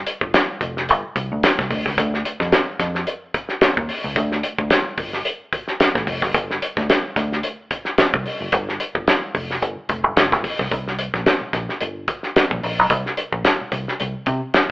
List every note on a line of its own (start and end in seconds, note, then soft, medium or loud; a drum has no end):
0.07 closed hi-hat medium
0.21 0.32 G1 medium
0.21 kick medium
0.34 snare loud
0.34 closed hi-hat medium
0.61 0.90 F1 medium
0.61 kick medium
0.61 closed hi-hat medium
0.77 snare soft
0.89 1.03 G1 loud
0.89 closed hi-hat medium
1.16 1.29 C2 medium
1.16 kick medium
1.16 closed hi-hat medium
1.32 1.42 D2 medium
1.43 snare loud
1.43 closed hi-hat loud
1.59 1.69 C2 medium
1.59 kick loud
1.59 snare soft
1.71 1.84 D2 medium
1.71 kick medium
1.71 open hi-hat medium
1.86 1.96 C#2 medium
1.86 kick medium
1.86 snare soft
1.98 2.21 D2 loud
1.98 kick loud
1.98 closed hi-hat loud
2.14 snare soft
2.25 closed hi-hat medium
2.40 2.51 F2 medium
2.40 kick medium
2.40 snare soft
2.52 snare loud
2.52 closed hi-hat medium
2.79 3.03 F2 medium
2.79 kick medium
2.79 snare soft
2.79 closed hi-hat medium
2.95 snare soft
3.07 closed hi-hat medium
3.34 kick medium
3.34 closed hi-hat medium
3.49 snare soft
3.61 muted fingered electric bass stroke soft
3.61 snare loud
3.61 closed hi-hat loud
3.77 3.88 D#2 medium
3.77 kick loud
3.89 open hi-hat medium
4.04 4.15 C#2 medium
4.16 4.40 D2 loud
4.16 kick loud
4.16 closed hi-hat loud
4.32 snare soft
4.43 closed hi-hat medium
4.58 4.69 D2 medium
4.58 kick loud
4.70 snare loud
4.70 closed hi-hat medium
4.98 5.21 G1 medium
4.98 kick medium
4.98 open hi-hat medium
5.13 snare soft
5.25 closed hi-hat medium
5.53 kick medium
5.53 closed hi-hat medium
5.68 snare soft
5.80 snare loud
5.80 closed hi-hat loud
5.95 6.06 A1 medium
5.95 kick loud
5.95 snare soft
6.07 6.22 F1 medium
6.07 kick medium
6.07 open hi-hat medium
6.22 6.33 F#1 medium
6.22 kick medium
6.22 snare soft
6.34 6.58 G1 loud
6.34 kick loud
6.34 closed hi-hat loud
6.51 snare soft
6.62 closed hi-hat medium
6.77 6.88 D2 medium
6.77 kick loud
6.77 snare soft
6.90 snare loud
6.90 closed hi-hat loud
7.16 7.40 D2 loud
7.16 kick medium
7.16 snare soft
7.16 closed hi-hat medium
7.32 snare soft
7.43 closed hi-hat medium
7.71 kick medium
7.71 closed hi-hat medium
7.85 snare soft
7.98 muted fingered electric bass stroke soft
7.98 snare loud
7.98 closed hi-hat loud
8.14 8.24 C2 medium
8.14 kick loud
8.26 open hi-hat medium
8.40 8.51 F#1 medium
8.52 8.77 G1 loud
8.52 kick loud
8.52 closed hi-hat loud
8.69 snare soft
8.80 closed hi-hat medium
8.95 9.05 G1 medium
8.95 kick medium
9.08 snare loud
9.08 closed hi-hat medium
9.35 9.58 F1 medium
9.35 kick medium
9.35 open hi-hat medium
9.51 snare soft
9.62 9.75 G1 loud
9.62 closed hi-hat medium
9.89 10.04 F1 loud
9.89 kick medium
9.89 closed hi-hat medium
10.04 10.14 G1 loud
10.16 10.33 F1 loud
10.16 snare loud
10.16 closed hi-hat loud
10.32 10.43 G1 medium
10.32 kick loud
10.32 snare soft
10.44 kick medium
10.44 open hi-hat medium
10.59 10.70 C2 medium
10.59 kick medium
10.59 snare soft
10.71 11.09 C2 loud
10.71 kick loud
10.71 closed hi-hat loud
10.88 snare soft
10.99 closed hi-hat medium
11.14 11.24 A#1 medium
11.14 kick medium
11.14 snare soft
11.26 snare loud
11.26 closed hi-hat medium
11.41 muted fingered electric bass stroke soft
11.53 11.67 A#1 medium
11.53 kick medium
11.53 snare soft
11.53 closed hi-hat medium
11.69 snare soft
11.81 12.05 G1 loud
11.81 closed hi-hat medium
12.08 kick medium
12.08 closed hi-hat medium
12.23 snare soft
12.36 snare loud
12.36 closed hi-hat loud
12.51 12.62 A#1 medium
12.51 kick loud
12.63 12.79 A#1 medium
12.63 open hi-hat medium
12.79 12.89 B1 medium
12.90 13.03 C2 loud
12.90 kick loud
12.90 closed hi-hat loud
13.06 snare soft
13.17 closed hi-hat medium
13.32 13.43 A#1 medium
13.32 kick medium
13.45 snare medium
13.45 closed hi-hat medium
13.61 muted fingered electric bass stroke soft
13.72 13.85 C2 medium
13.72 kick medium
13.72 closed hi-hat medium
13.88 snare soft
14.00 14.13 C2 loud
14.00 closed hi-hat medium
14.26 14.40 C3 loud
14.26 kick medium
14.26 closed hi-hat medium
14.54 snare loud
14.54 closed hi-hat medium